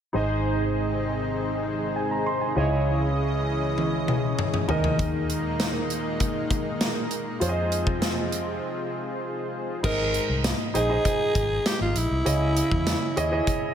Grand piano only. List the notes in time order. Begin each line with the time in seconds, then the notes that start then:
0.13 G#2 D#4 G#4 C5 D#5
1.96 G#5
2.11 A#5
2.26 C6
2.41 G#5
2.55 C#3 E4 G#4 C#5 D#5
4.68 D#3 D#4 G#4 A#4 D#5
7.40 F4 G#4 C5 C#5
7.49 D#5
9.83 G#2 D#4 G#4 C5 D#5
10.74 D#4 G#4 C5 D#5
10.89 D#4 G#4 C5 D#5
12.25 C#3 E4 G#4 C#5 D#5
13.16 E4 G#4 C#5 D#5
13.31 E4 G#4 C#5 D#5